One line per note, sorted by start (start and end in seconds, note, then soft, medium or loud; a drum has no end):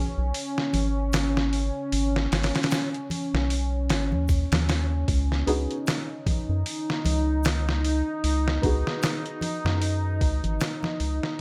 0.00 5.09 C#4 medium
0.18 0.32 B1 loud
0.34 open hi-hat medium
0.58 snare soft
0.73 1.71 G#1 medium
0.73 open hi-hat medium
0.73 low conga medium
1.12 snare loud
1.12 open hi-hat medium
1.12 shaker medium
1.37 snare medium
1.53 open hi-hat medium
1.92 2.28 G#1 medium
1.92 open hi-hat medium
2.16 snare medium
2.32 2.52 G#1 medium
2.32 snare loud
2.32 open hi-hat medium
2.43 snare medium
2.43 open hi-hat medium
2.55 snare medium
2.55 open hi-hat medium
2.63 snare medium
2.63 open hi-hat medium
2.71 snare loud
2.71 open hi-hat medium
2.71 shaker medium
2.94 closed hi-hat soft
3.10 open hi-hat medium
3.10 low conga medium
3.34 3.91 B1 loud
3.34 snare medium
3.50 open hi-hat medium
3.90 4.14 G#1 medium
3.90 snare loud
3.90 open hi-hat medium
4.12 4.46 D#2 loud
4.12 low conga medium
4.28 kick medium
4.28 open hi-hat medium
4.28 shaker medium
4.52 5.05 D#2 loud
4.52 snare loud
4.52 open hi-hat medium
4.52 low conga medium
4.69 snare loud
4.69 open hi-hat medium
5.08 5.44 C#2 loud
5.08 11.41 D#4 medium
5.08 kick loud
5.08 open hi-hat medium
5.32 snare soft
5.46 5.67 C#2 medium
5.46 5.72 B3 medium
5.46 5.73 D#4 medium
5.46 5.73 F#4 medium
5.46 5.73 G#4 medium
5.46 open hi-hat medium
5.71 closed hi-hat soft
5.87 snare loud
5.87 open hi-hat medium
5.87 shaker medium
6.26 kick medium
6.26 open hi-hat medium
6.26 low conga medium
6.49 6.64 F#2 medium
6.66 open hi-hat medium
6.90 snare soft
7.05 8.03 C#2 medium
7.05 open hi-hat medium
7.05 low conga medium
7.43 snare loud
7.43 open hi-hat medium
7.43 shaker medium
7.69 snare soft
7.85 open hi-hat medium
8.24 8.59 C#2 loud
8.24 open hi-hat medium
8.48 snare medium
8.62 8.83 C#2 medium
8.62 11.37 B3 medium
8.62 11.37 D#4 medium
8.62 11.38 F#4 medium
8.62 kick loud
8.62 open hi-hat medium
8.66 11.39 G#4 medium
8.87 snare soft
9.02 snare loud
9.02 open hi-hat medium
9.02 shaker medium
9.26 closed hi-hat soft
9.41 open hi-hat medium
9.41 low conga medium
9.65 10.23 F#2 loud
9.65 snare medium
9.82 open hi-hat medium
10.21 10.41 C#2 loud
10.21 kick loud
10.21 open hi-hat medium
10.44 10.59 G#1 loud
10.44 closed hi-hat soft
10.44 low conga medium
10.60 snare loud
10.60 open hi-hat medium
10.60 shaker medium
10.83 snare soft
10.83 low conga medium
11.00 11.20 C#2 medium
11.00 open hi-hat medium
11.23 snare medium